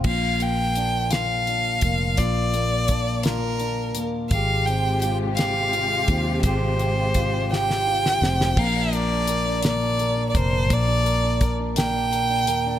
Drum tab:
CC |x-----------|------------|------------|------------|
HH |--x-x-x-x-x-|x-x-x-x-x-x-|x-x-x-x-x-x-|x-x-x-------|
SD |------o-----|------o-----|------o-----|------oo-ooo|
BD |o---------o-|o---o-------|o---------o-|o---o-------|

CC |x-----------|------------|
HH |--x-x-x-x-x-|x-x-x-x-x-x-|
SD |------o-----|------o-----|
BD |o---------o-|o---o-------|